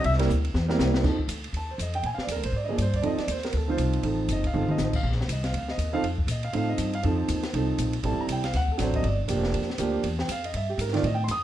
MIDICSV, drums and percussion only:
0, 0, Header, 1, 2, 480
1, 0, Start_track
1, 0, Tempo, 249688
1, 88, Time_signature, 4, 2, 24, 8
1, 21983, End_track
2, 0, Start_track
2, 0, Title_t, "Drums"
2, 80, Note_on_c, 9, 51, 64
2, 251, Note_on_c, 9, 38, 31
2, 272, Note_off_c, 9, 51, 0
2, 370, Note_on_c, 9, 51, 80
2, 414, Note_off_c, 9, 38, 0
2, 414, Note_on_c, 9, 38, 49
2, 562, Note_off_c, 9, 51, 0
2, 575, Note_on_c, 9, 44, 60
2, 606, Note_off_c, 9, 38, 0
2, 767, Note_off_c, 9, 44, 0
2, 855, Note_on_c, 9, 51, 53
2, 1048, Note_off_c, 9, 51, 0
2, 1054, Note_on_c, 9, 38, 57
2, 1246, Note_off_c, 9, 38, 0
2, 1337, Note_on_c, 9, 38, 65
2, 1530, Note_off_c, 9, 38, 0
2, 1530, Note_on_c, 9, 44, 60
2, 1532, Note_on_c, 9, 38, 90
2, 1723, Note_off_c, 9, 44, 0
2, 1725, Note_off_c, 9, 38, 0
2, 1814, Note_on_c, 9, 38, 79
2, 2000, Note_off_c, 9, 38, 0
2, 2000, Note_on_c, 9, 36, 73
2, 2000, Note_on_c, 9, 38, 36
2, 2000, Note_on_c, 9, 49, 67
2, 2192, Note_off_c, 9, 36, 0
2, 2192, Note_off_c, 9, 38, 0
2, 2192, Note_off_c, 9, 49, 0
2, 2289, Note_on_c, 9, 36, 61
2, 2473, Note_on_c, 9, 44, 66
2, 2473, Note_on_c, 9, 51, 77
2, 2481, Note_off_c, 9, 36, 0
2, 2665, Note_off_c, 9, 44, 0
2, 2665, Note_off_c, 9, 51, 0
2, 2768, Note_on_c, 9, 51, 45
2, 2958, Note_off_c, 9, 51, 0
2, 2958, Note_on_c, 9, 51, 61
2, 3151, Note_off_c, 9, 51, 0
2, 3445, Note_on_c, 9, 44, 68
2, 3445, Note_on_c, 9, 51, 67
2, 3637, Note_off_c, 9, 44, 0
2, 3637, Note_off_c, 9, 51, 0
2, 3720, Note_on_c, 9, 51, 48
2, 3908, Note_off_c, 9, 51, 0
2, 3908, Note_on_c, 9, 51, 57
2, 4100, Note_off_c, 9, 51, 0
2, 4196, Note_on_c, 9, 38, 54
2, 4388, Note_off_c, 9, 38, 0
2, 4390, Note_on_c, 9, 44, 63
2, 4390, Note_on_c, 9, 51, 80
2, 4582, Note_off_c, 9, 44, 0
2, 4582, Note_off_c, 9, 51, 0
2, 4678, Note_on_c, 9, 51, 73
2, 4870, Note_off_c, 9, 51, 0
2, 5350, Note_on_c, 9, 44, 57
2, 5350, Note_on_c, 9, 51, 73
2, 5542, Note_off_c, 9, 44, 0
2, 5542, Note_off_c, 9, 51, 0
2, 5638, Note_on_c, 9, 36, 52
2, 5640, Note_on_c, 9, 51, 51
2, 5830, Note_off_c, 9, 36, 0
2, 5830, Note_off_c, 9, 51, 0
2, 5830, Note_on_c, 9, 51, 55
2, 6022, Note_off_c, 9, 51, 0
2, 6119, Note_on_c, 9, 51, 53
2, 6121, Note_on_c, 9, 38, 39
2, 6305, Note_off_c, 9, 51, 0
2, 6305, Note_on_c, 9, 44, 58
2, 6305, Note_on_c, 9, 51, 84
2, 6313, Note_off_c, 9, 38, 0
2, 6481, Note_on_c, 9, 38, 27
2, 6498, Note_off_c, 9, 44, 0
2, 6498, Note_off_c, 9, 51, 0
2, 6597, Note_on_c, 9, 51, 54
2, 6631, Note_off_c, 9, 38, 0
2, 6631, Note_on_c, 9, 38, 47
2, 6776, Note_off_c, 9, 51, 0
2, 6776, Note_on_c, 9, 51, 61
2, 6823, Note_off_c, 9, 38, 0
2, 6969, Note_off_c, 9, 51, 0
2, 7269, Note_on_c, 9, 44, 58
2, 7269, Note_on_c, 9, 51, 71
2, 7461, Note_off_c, 9, 44, 0
2, 7461, Note_off_c, 9, 51, 0
2, 7561, Note_on_c, 9, 51, 47
2, 7751, Note_off_c, 9, 51, 0
2, 7751, Note_on_c, 9, 51, 58
2, 7943, Note_off_c, 9, 51, 0
2, 8237, Note_on_c, 9, 44, 67
2, 8237, Note_on_c, 9, 51, 70
2, 8430, Note_off_c, 9, 44, 0
2, 8430, Note_off_c, 9, 51, 0
2, 8527, Note_on_c, 9, 36, 57
2, 8533, Note_on_c, 9, 51, 52
2, 8720, Note_off_c, 9, 36, 0
2, 8725, Note_off_c, 9, 51, 0
2, 8728, Note_on_c, 9, 47, 48
2, 8920, Note_off_c, 9, 47, 0
2, 9007, Note_on_c, 9, 47, 61
2, 9190, Note_on_c, 9, 44, 64
2, 9192, Note_on_c, 9, 38, 55
2, 9199, Note_off_c, 9, 47, 0
2, 9382, Note_off_c, 9, 44, 0
2, 9384, Note_off_c, 9, 38, 0
2, 9481, Note_on_c, 9, 49, 74
2, 9487, Note_on_c, 9, 36, 74
2, 9673, Note_off_c, 9, 49, 0
2, 9679, Note_off_c, 9, 36, 0
2, 9844, Note_on_c, 9, 38, 30
2, 10013, Note_off_c, 9, 38, 0
2, 10013, Note_on_c, 9, 38, 47
2, 10168, Note_on_c, 9, 44, 68
2, 10168, Note_on_c, 9, 51, 81
2, 10205, Note_off_c, 9, 38, 0
2, 10361, Note_off_c, 9, 44, 0
2, 10361, Note_off_c, 9, 51, 0
2, 10451, Note_on_c, 9, 51, 51
2, 10453, Note_on_c, 9, 38, 51
2, 10643, Note_off_c, 9, 51, 0
2, 10645, Note_off_c, 9, 38, 0
2, 10647, Note_on_c, 9, 51, 64
2, 10839, Note_off_c, 9, 51, 0
2, 10927, Note_on_c, 9, 38, 47
2, 11120, Note_off_c, 9, 38, 0
2, 11122, Note_on_c, 9, 44, 57
2, 11122, Note_on_c, 9, 51, 71
2, 11314, Note_off_c, 9, 44, 0
2, 11314, Note_off_c, 9, 51, 0
2, 11605, Note_on_c, 9, 51, 61
2, 11797, Note_off_c, 9, 51, 0
2, 11887, Note_on_c, 9, 36, 75
2, 12071, Note_on_c, 9, 44, 71
2, 12071, Note_on_c, 9, 51, 80
2, 12079, Note_off_c, 9, 36, 0
2, 12263, Note_off_c, 9, 44, 0
2, 12263, Note_off_c, 9, 51, 0
2, 12357, Note_on_c, 9, 51, 50
2, 12550, Note_off_c, 9, 51, 0
2, 12557, Note_on_c, 9, 51, 60
2, 12750, Note_off_c, 9, 51, 0
2, 13031, Note_on_c, 9, 44, 54
2, 13031, Note_on_c, 9, 51, 76
2, 13223, Note_off_c, 9, 44, 0
2, 13223, Note_off_c, 9, 51, 0
2, 13327, Note_on_c, 9, 51, 52
2, 13519, Note_off_c, 9, 51, 0
2, 13519, Note_on_c, 9, 51, 58
2, 13712, Note_off_c, 9, 51, 0
2, 14003, Note_on_c, 9, 44, 77
2, 14003, Note_on_c, 9, 51, 77
2, 14195, Note_off_c, 9, 44, 0
2, 14195, Note_off_c, 9, 51, 0
2, 14288, Note_on_c, 9, 51, 54
2, 14290, Note_on_c, 9, 38, 59
2, 14480, Note_off_c, 9, 51, 0
2, 14482, Note_off_c, 9, 38, 0
2, 14489, Note_on_c, 9, 51, 62
2, 14681, Note_off_c, 9, 51, 0
2, 14964, Note_on_c, 9, 44, 65
2, 14964, Note_on_c, 9, 51, 73
2, 15156, Note_off_c, 9, 44, 0
2, 15156, Note_off_c, 9, 51, 0
2, 15248, Note_on_c, 9, 51, 53
2, 15440, Note_off_c, 9, 51, 0
2, 15445, Note_on_c, 9, 51, 60
2, 15637, Note_off_c, 9, 51, 0
2, 15928, Note_on_c, 9, 44, 54
2, 15928, Note_on_c, 9, 51, 84
2, 16121, Note_off_c, 9, 44, 0
2, 16121, Note_off_c, 9, 51, 0
2, 16217, Note_on_c, 9, 51, 56
2, 16219, Note_on_c, 9, 38, 48
2, 16406, Note_off_c, 9, 51, 0
2, 16406, Note_on_c, 9, 51, 63
2, 16408, Note_off_c, 9, 38, 0
2, 16408, Note_on_c, 9, 38, 37
2, 16598, Note_off_c, 9, 51, 0
2, 16600, Note_off_c, 9, 38, 0
2, 16693, Note_on_c, 9, 36, 58
2, 16885, Note_off_c, 9, 36, 0
2, 16890, Note_on_c, 9, 44, 60
2, 16890, Note_on_c, 9, 51, 70
2, 16892, Note_on_c, 9, 38, 38
2, 17082, Note_off_c, 9, 44, 0
2, 17082, Note_off_c, 9, 51, 0
2, 17084, Note_off_c, 9, 38, 0
2, 17175, Note_on_c, 9, 36, 57
2, 17177, Note_on_c, 9, 51, 47
2, 17368, Note_off_c, 9, 36, 0
2, 17370, Note_off_c, 9, 51, 0
2, 17372, Note_on_c, 9, 51, 56
2, 17564, Note_off_c, 9, 51, 0
2, 17847, Note_on_c, 9, 44, 69
2, 17847, Note_on_c, 9, 51, 78
2, 18039, Note_off_c, 9, 44, 0
2, 18039, Note_off_c, 9, 51, 0
2, 18137, Note_on_c, 9, 38, 53
2, 18329, Note_off_c, 9, 38, 0
2, 18336, Note_on_c, 9, 51, 66
2, 18490, Note_on_c, 9, 38, 29
2, 18529, Note_off_c, 9, 51, 0
2, 18647, Note_off_c, 9, 38, 0
2, 18647, Note_on_c, 9, 38, 43
2, 18802, Note_on_c, 9, 44, 62
2, 18802, Note_on_c, 9, 51, 73
2, 18839, Note_off_c, 9, 38, 0
2, 18994, Note_off_c, 9, 44, 0
2, 18994, Note_off_c, 9, 51, 0
2, 19292, Note_on_c, 9, 51, 70
2, 19484, Note_off_c, 9, 51, 0
2, 19587, Note_on_c, 9, 38, 65
2, 19776, Note_on_c, 9, 44, 68
2, 19776, Note_on_c, 9, 51, 82
2, 19780, Note_off_c, 9, 38, 0
2, 19968, Note_off_c, 9, 44, 0
2, 19968, Note_off_c, 9, 51, 0
2, 20071, Note_on_c, 9, 51, 53
2, 20255, Note_off_c, 9, 51, 0
2, 20255, Note_on_c, 9, 51, 69
2, 20447, Note_off_c, 9, 51, 0
2, 20739, Note_on_c, 9, 44, 68
2, 20739, Note_on_c, 9, 51, 79
2, 20914, Note_on_c, 9, 38, 27
2, 20932, Note_off_c, 9, 44, 0
2, 20932, Note_off_c, 9, 51, 0
2, 21028, Note_on_c, 9, 51, 52
2, 21058, Note_off_c, 9, 38, 0
2, 21058, Note_on_c, 9, 38, 46
2, 21220, Note_off_c, 9, 51, 0
2, 21220, Note_on_c, 9, 51, 61
2, 21250, Note_off_c, 9, 38, 0
2, 21412, Note_off_c, 9, 51, 0
2, 21690, Note_on_c, 9, 44, 65
2, 21690, Note_on_c, 9, 51, 81
2, 21882, Note_off_c, 9, 44, 0
2, 21882, Note_off_c, 9, 51, 0
2, 21983, End_track
0, 0, End_of_file